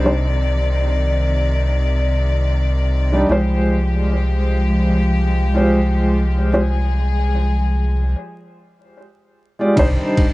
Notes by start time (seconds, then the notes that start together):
Already playing: C2 C3 D#3 D5
0.04 G3 D4 D#4 C5
3.12 G3 D4 D#4 D5
3.29 C2 F3 G#3 F4 G4 C5
5.54 G#3 F4 G4 C5
6.52 G#3 F4 G4 G#4 C5
9.59 G#3 F4 G4 D5
9.76 C2 C3 D#3 G3 D4 D#4 C5 D5, kick, ride
10.17 kick, ride